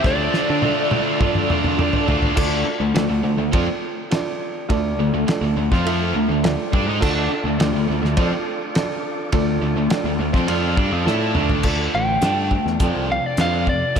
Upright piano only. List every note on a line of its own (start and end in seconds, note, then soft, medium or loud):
0.04 0.51 F4 medium
0.04 0.51 A4 medium
0.04 0.52 D5 medium
0.62 1.09 F4 medium
0.62 1.10 A4 medium
0.62 1.10 D5 medium
1.19 1.67 F4 medium
1.19 1.67 A4 medium
1.19 1.68 D5 loud
1.78 2.25 F4 medium
1.78 2.25 A4 medium
1.78 2.26 D5 loud
2.36 2.83 F4 loud
2.36 2.83 A4 loud
2.36 2.84 D5 loud
2.95 3.42 F4 medium
2.95 3.42 A4 medium
2.95 3.42 D5 loud
3.52 3.99 F4 medium
3.52 3.99 A4 medium
3.52 4.00 D5 medium
4.10 4.57 F4 medium
4.10 4.58 A4 medium
4.10 4.58 D5 medium
4.69 5.15 F4 loud
4.69 5.16 A4 loud
4.69 5.17 D5 loud
5.28 5.74 F4 medium
5.28 5.74 A4 medium
5.28 5.75 D5 loud
5.85 6.31 F4 medium
5.85 6.32 A4 medium
5.85 6.33 E5 loud
6.44 6.90 F4 medium
6.44 6.90 A4 medium
6.44 6.91 D5 loud
7.00 7.47 F4 loud
7.00 7.48 A4 loud
7.00 7.48 D5 loud
7.59 8.06 F4 medium
7.59 8.06 A4 medium
7.59 8.07 D5 loud
8.17 8.64 F4 medium
8.17 8.64 A4 medium
8.17 8.64 D5 loud
8.74 9.21 F4 medium
8.74 9.22 A4 medium
8.74 9.22 D5 loud
9.32 9.79 F4 loud
9.32 9.80 A4 loud
9.32 9.80 D5 loud
9.91 10.38 F4 medium
9.91 10.38 A4 medium
9.91 10.38 D5 loud
10.48 10.95 F4 medium
10.48 10.95 A4 medium
10.48 10.96 D5 loud
11.04 11.52 F4 medium
11.04 11.52 A4 medium
11.04 11.53 D5 medium
11.64 12.11 F4 medium
11.64 12.11 A4 medium
11.64 12.11 D5 medium
12.20 12.68 F4 medium
12.20 12.69 A4 medium
12.20 12.69 D5 medium
12.80 13.27 F4 medium
12.80 13.28 A4 medium
12.80 13.28 D5 medium
13.37 13.84 F4 medium
13.37 13.85 A4 medium
13.37 13.85 D5 medium
13.95 14.00 F4 medium
13.95 14.00 A#4 medium